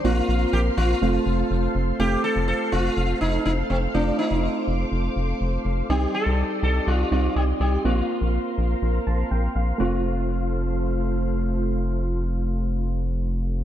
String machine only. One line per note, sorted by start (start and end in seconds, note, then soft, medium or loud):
0.04 1.01 A#4 medium
0.04 1.97 C5 medium
0.04 1.97 F5 medium
0.04 1.97 C6 medium
1.02 1.98 A4 medium
1.99 5.86 A4 medium
1.99 5.86 C5 medium
1.99 5.86 F5 medium
1.99 3.93 C6 medium
3.94 5.88 D6 medium
5.89 7.83 G4 medium
5.89 7.83 D5 medium
5.89 7.83 D#5 medium
5.89 9.76 C6 medium
7.85 9.78 A#4 medium
7.85 9.78 C5 medium
7.85 9.78 F5 medium
9.80 13.64 A3 medium
9.80 13.64 F4 medium
9.80 13.64 C5 medium
9.80 13.64 F5 medium